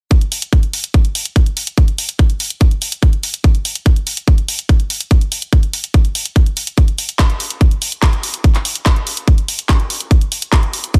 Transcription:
0.11 kick loud
0.11 closed hi-hat medium
0.21 closed hi-hat soft
0.32 open hi-hat loud
0.42 closed hi-hat medium
0.53 kick loud
0.53 closed hi-hat medium
0.63 closed hi-hat soft
0.73 open hi-hat medium
0.84 closed hi-hat medium
0.94 kick loud
0.94 closed hi-hat medium
1.05 closed hi-hat soft
1.15 open hi-hat loud
1.25 closed hi-hat medium
1.36 kick loud
1.36 closed hi-hat medium
1.46 closed hi-hat soft
1.57 open hi-hat medium
1.67 closed hi-hat medium
1.78 kick loud
1.78 closed hi-hat medium
1.88 closed hi-hat soft
1.98 open hi-hat loud
2.09 closed hi-hat medium
2.19 kick loud
2.19 closed hi-hat medium
2.30 closed hi-hat soft
2.40 open hi-hat medium
2.50 closed hi-hat medium
2.61 kick loud
2.61 closed hi-hat medium
2.71 closed hi-hat soft
2.82 open hi-hat loud
2.92 closed hi-hat medium
3.03 kick loud
3.03 closed hi-hat medium
3.13 closed hi-hat soft
3.23 open hi-hat medium
3.34 closed hi-hat medium
3.44 kick loud
3.44 closed hi-hat medium
3.55 closed hi-hat soft
3.65 open hi-hat loud
3.75 closed hi-hat medium
3.86 kick loud
3.86 closed hi-hat medium
3.96 closed hi-hat soft
4.07 open hi-hat medium
4.17 closed hi-hat soft
4.28 kick loud
4.28 closed hi-hat soft
4.38 closed hi-hat soft
4.48 open hi-hat loud
4.59 closed hi-hat medium
4.69 kick loud
4.69 closed hi-hat soft
4.80 closed hi-hat soft
4.90 open hi-hat loud
5.01 closed hi-hat soft
5.11 kick loud
5.11 closed hi-hat soft
5.21 closed hi-hat soft
5.32 open hi-hat loud
5.42 closed hi-hat soft
5.53 kick loud
5.53 closed hi-hat medium
5.63 closed hi-hat soft
5.73 open hi-hat medium
5.84 closed hi-hat soft
5.94 kick loud
5.94 closed hi-hat soft
6.05 closed hi-hat soft
6.15 open hi-hat loud
6.25 closed hi-hat soft
6.36 kick loud
6.36 closed hi-hat soft
6.46 closed hi-hat soft
6.57 open hi-hat loud
6.67 closed hi-hat soft
6.78 kick loud
6.78 closed hi-hat soft
6.88 closed hi-hat soft
6.98 open hi-hat loud
7.09 closed hi-hat soft
7.19 kick loud
7.19 clap loud
7.19 closed hi-hat medium
7.30 closed hi-hat soft
7.40 open hi-hat medium
7.50 closed hi-hat medium
7.61 kick loud
7.61 closed hi-hat soft
7.71 closed hi-hat soft
7.82 open hi-hat loud
7.92 closed hi-hat medium
8.03 kick loud
8.03 clap loud
8.03 closed hi-hat medium
8.13 closed hi-hat soft
8.23 open hi-hat medium
8.34 closed hi-hat soft
8.44 kick loud
8.44 closed hi-hat soft
8.55 clap soft
8.55 closed hi-hat soft
8.65 open hi-hat loud
8.75 closed hi-hat medium
8.86 kick loud
8.86 clap loud
8.86 closed hi-hat medium
8.96 closed hi-hat soft
9.07 open hi-hat medium
9.17 closed hi-hat medium
9.28 kick loud
9.28 closed hi-hat medium
9.38 closed hi-hat soft
9.48 open hi-hat loud
9.59 closed hi-hat medium
9.69 kick loud
9.69 clap loud
9.69 closed hi-hat medium
9.80 closed hi-hat soft
9.90 open hi-hat medium
10.01 closed hi-hat medium
10.11 kick loud
10.11 closed hi-hat medium
10.21 closed hi-hat soft
10.32 open hi-hat loud
10.42 closed hi-hat medium
10.53 kick loud
10.53 clap loud
10.53 closed hi-hat medium
10.63 closed hi-hat soft
10.73 open hi-hat medium
10.84 closed hi-hat medium
10.94 kick loud
10.94 closed hi-hat medium

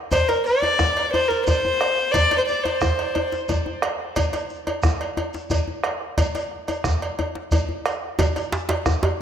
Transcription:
0.12 0.30 C5 medium
0.12 bombo rim soft
0.12 bombo low medium
0.12 cowbell medium
0.12 djembe slap soft
0.12 djembe tone medium
0.12 djembe bass medium
0.12 shekere medium
0.28 0.45 A#4 medium
0.28 cowbell soft
0.28 djembe slap medium
0.28 shekere soft
0.46 1.09 D5 medium
0.46 djembe slap soft
0.46 shekere soft
0.62 bombo rim soft
0.62 cowbell soft
0.62 djembe tone medium
0.79 bombo rim medium
0.79 bombo low medium
0.79 djembe bass medium
0.79 shekere medium
0.97 cowbell soft
1.13 1.29 C5 medium
1.13 cowbell soft
1.13 djembe tone medium
1.28 1.44 A#4 medium
1.28 djembe slap soft
1.28 shekere soft
1.45 2.13 C5 medium
1.45 bombo rim soft
1.45 bombo low medium
1.45 cowbell soft
1.45 djembe bass medium
1.45 shekere medium
1.65 djembe tone medium
1.81 bombo rim medium
1.81 cowbell medium
1.98 bombo rim soft
2.11 2.37 D5 medium
2.11 bombo rim soft
2.11 bombo low medium
2.11 cowbell medium
2.11 djembe slap soft
2.11 djembe tone medium
2.11 djembe bass medium
2.11 shekere soft
2.31 cowbell medium
2.31 djembe slap medium
2.31 shekere soft
2.38 2.42 C5 medium
2.46 2.66 D5 medium
2.46 djembe slap soft
2.46 shekere soft
2.64 3.32 C5 medium
2.64 bombo rim soft
2.64 cowbell soft
2.64 djembe tone medium
2.81 bombo rim medium
2.81 bombo low medium
2.81 djembe bass medium
2.81 shekere medium
2.99 cowbell soft
3.15 cowbell medium
3.15 djembe tone medium
3.32 djembe slap medium
3.32 shekere soft
3.48 bombo rim soft
3.48 bombo low medium
3.48 cowbell medium
3.48 djembe bass medium
3.48 shekere medium
3.66 djembe tone medium
3.82 bombo rim medium
3.82 cowbell medium
4.00 bombo rim soft
4.16 bombo rim soft
4.16 bombo low medium
4.16 cowbell medium
4.16 djembe slap soft
4.16 djembe tone medium
4.16 djembe bass medium
4.16 shekere soft
4.33 cowbell medium
4.33 djembe slap medium
4.33 shekere soft
4.50 djembe slap soft
4.50 shekere soft
4.67 bombo rim soft
4.67 cowbell medium
4.67 djembe tone medium
4.83 bombo rim medium
4.83 bombo low medium
4.83 djembe bass medium
4.83 shekere medium
5.01 cowbell soft
5.17 cowbell medium
5.17 djembe tone medium
5.34 djembe slap medium
5.34 shekere soft
5.50 bombo rim soft
5.50 bombo low medium
5.50 cowbell medium
5.50 djembe bass medium
5.50 shekere medium
5.68 djembe tone soft
5.83 bombo rim medium
5.83 cowbell medium
6.01 bombo rim soft
6.17 bombo rim soft
6.17 bombo low medium
6.17 cowbell medium
6.17 djembe tone medium
6.17 djembe bass medium
6.17 shekere medium
6.35 cowbell medium
6.35 djembe slap medium
6.35 shekere soft
6.51 bombo rim soft
6.68 bombo rim soft
6.68 cowbell medium
6.68 djembe tone medium
6.68 shekere soft
6.84 bombo rim medium
6.84 bombo low medium
6.84 djembe slap soft
6.84 djembe bass medium
6.84 shekere medium
7.02 cowbell soft
7.02 djembe slap soft
7.19 cowbell soft
7.19 djembe slap soft
7.19 djembe tone medium
7.35 bombo rim soft
7.35 djembe slap medium
7.51 bombo low medium
7.51 cowbell medium
7.51 djembe bass medium
7.51 shekere medium
7.69 djembe tone soft
7.86 bombo rim medium
7.86 cowbell medium
7.86 shekere soft
8.19 bombo rim soft
8.19 bombo low loud
8.19 cowbell medium
8.19 djembe slap soft
8.19 djembe tone loud
8.19 djembe tone medium
8.19 djembe bass medium
8.19 shekere medium
8.36 cowbell medium
8.36 djembe slap medium
8.36 shekere soft
8.52 djembe slap medium
8.52 djembe slap soft
8.52 shekere soft
8.69 bombo rim soft
8.69 cowbell medium
8.69 djembe slap medium
8.69 djembe tone medium
8.86 bombo rim loud
8.86 bombo low loud
8.86 djembe bass medium
8.86 shekere medium
9.03 cowbell soft
9.03 djembe tone loud

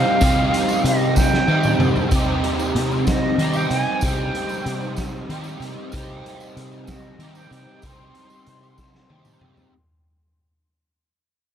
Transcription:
0.00 0.20 C3 medium
0.00 0.22 G3 medium
0.00 0.23 C4 medium
0.00 0.23 D#4 medium
0.00 0.24 G4 medium
0.00 0.86 F5 loud
0.21 1.47 C3 medium
0.21 0.49 C3 medium
0.21 1.48 G3 medium
0.21 1.49 C4 medium
0.21 1.50 D#4 medium
0.21 1.51 G4 medium
0.21 kick loud
0.21 closed hi-hat medium
0.21 tambourine medium
0.54 closed hi-hat medium
0.69 tambourine medium
0.84 1.40 C3 medium
0.84 1.19 D#5 medium
0.84 closed hi-hat medium
0.84 tambourine soft
1.00 tambourine soft
1.16 1.88 G5 medium
1.16 kick medium
1.16 snare medium
1.16 tambourine medium
1.33 snare medium
1.48 2.12 C3 medium
1.48 1.76 D#3 medium
1.48 2.12 G3 medium
1.48 2.13 C4 medium
1.48 2.14 D#4 medium
1.48 2.15 G4 medium
1.48 tambourine soft
1.63 mid tom medium
1.63 tambourine medium
1.79 1.93 C3 medium
1.79 mid tom medium
1.79 tambourine soft
1.95 floor tom medium
1.95 tambourine soft
2.11 3.39 C3 medium
2.11 2.40 C3 medium
2.11 3.40 G3 medium
2.11 3.41 C4 medium
2.11 3.41 D#4 medium
2.11 kick loud
2.11 closed hi-hat medium
2.11 tambourine medium
2.15 3.42 G4 medium
2.44 closed hi-hat medium
2.59 tambourine medium
2.75 3.31 C3 medium
2.75 closed hi-hat medium
2.91 tambourine soft
3.07 3.57 D#5 medium
3.07 kick medium
3.07 snare loud
3.07 closed hi-hat medium
3.07 tambourine medium
3.38 4.02 C3 medium
3.38 3.66 D#3 medium
3.38 4.02 G3 medium
3.38 4.03 C4 medium
3.38 4.05 D#4 medium
3.38 closed hi-hat medium
3.42 4.05 G4 medium
3.53 3.71 G5 medium
3.53 tambourine medium
3.70 3.84 C3 medium
3.70 4.06 G#5 medium
3.70 closed hi-hat medium
3.70 tambourine soft
4.01 5.29 C3 medium
4.01 4.30 C3 medium
4.01 5.30 G3 medium
4.01 5.30 C4 medium
4.01 5.31 D#4 medium
4.01 4.99 G5 medium
4.01 kick loud
4.01 closed hi-hat medium
4.01 tambourine medium
4.06 5.32 G4 medium
4.35 closed hi-hat medium
4.49 tambourine medium
4.66 5.22 C3 medium
4.66 closed hi-hat medium
4.81 tambourine soft
4.96 kick medium
4.96 snare medium
4.96 closed hi-hat medium
4.96 tambourine medium
5.29 5.92 C3 medium
5.29 5.57 D#3 medium
5.29 5.93 G3 medium
5.29 5.94 C4 medium
5.29 5.95 D#4 medium
5.29 5.96 G4 medium
5.29 closed hi-hat medium
5.44 tambourine medium
5.60 5.74 C3 medium
5.60 closed hi-hat medium
5.60 tambourine soft
5.92 7.19 C3 medium
5.92 6.21 C3 medium
5.92 7.21 G3 medium
5.92 7.21 C4 medium
5.92 7.22 D#4 loud
5.92 kick loud
5.92 closed hi-hat medium
5.92 tambourine medium
5.96 7.23 G4 medium
6.26 closed hi-hat medium
6.40 tambourine medium
6.56 7.12 C3 medium
6.56 closed hi-hat medium
6.72 tambourine soft
6.87 7.33 D#5 medium
6.87 kick medium
6.87 snare medium
6.87 closed hi-hat medium
6.87 tambourine medium
7.19 7.83 C3 medium
7.19 7.47 D#3 medium
7.19 7.84 G3 medium
7.19 7.85 C4 medium
7.19 7.85 D#4 medium
7.19 closed hi-hat medium
7.23 7.86 G4 medium
7.35 7.51 G5 medium
7.35 tambourine medium
7.51 7.65 C3 medium
7.51 7.88 G5 medium
7.51 closed hi-hat medium
7.51 tambourine soft
7.82 9.08 C3 medium
7.82 8.11 C3 medium
7.82 9.09 G3 medium
7.82 9.09 C4 medium
7.82 9.10 D#4 medium
7.82 kick loud
7.82 closed hi-hat medium
7.82 tambourine medium
7.86 9.10 G4 loud
7.86 9.43 C6 loud
8.15 closed hi-hat medium
8.15 tambourine soft
8.30 tambourine medium
8.46 9.03 C3 medium
8.46 closed hi-hat medium
8.63 tambourine soft
8.78 kick medium
8.78 snare soft
8.78 tambourine medium
8.94 snare medium
8.94 tambourine soft
9.09 9.71 C3 medium
9.09 9.38 D#3 medium
9.09 9.72 G3 medium
9.09 9.72 C4 medium
9.09 9.73 D#4 medium
9.09 9.73 G4 medium
9.09 high tom medium
9.25 mid tom medium
9.25 tambourine medium
9.41 9.55 C3 medium
9.41 mid tom medium
9.57 floor tom medium
9.57 tambourine soft

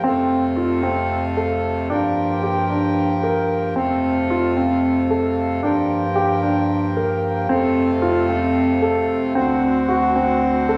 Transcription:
0.03 1.86 F2 medium
0.03 1.89 C3 medium
0.03 1.89 A3 medium
0.03 0.43 C4 medium
0.03 1.89 F4 medium
0.57 0.76 F4 medium
0.83 1.22 C4 medium
1.37 1.76 A4 medium
1.90 3.73 G2 medium
1.90 3.75 F3 medium
1.90 3.75 A#3 medium
1.90 2.29 D4 medium
1.90 3.75 G4 medium
2.43 2.63 G4 medium
2.70 3.09 D4 medium
3.23 3.62 A#4 medium
3.76 5.59 F2 medium
3.76 5.61 C3 medium
3.76 5.61 A3 medium
3.76 4.15 C4 medium
3.76 5.61 F4 medium
4.30 4.50 F4 medium
4.57 4.96 C4 medium
5.10 5.49 A4 medium
5.62 7.45 G2 medium
5.62 7.48 F3 medium
5.62 7.47 A#3 medium
5.62 6.02 D4 medium
5.62 7.48 G4 medium
6.16 6.35 G4 medium
6.43 6.82 D4 medium
6.97 7.36 A#4 medium
7.49 9.17 F2 loud
7.49 9.34 C3 medium
7.49 9.34 A3 medium
7.49 7.88 C4 medium
7.49 9.34 F4 medium
8.02 8.22 F4 medium
8.29 8.68 C4 medium
8.82 9.21 A4 medium
9.34 10.77 D2 medium
9.34 10.77 D3 medium
9.34 9.75 C4 medium
9.34 10.77 C4 medium
9.34 10.77 F#4 medium
9.88 10.08 F#4 medium
10.16 10.55 C4 medium
10.69 10.77 A4 medium

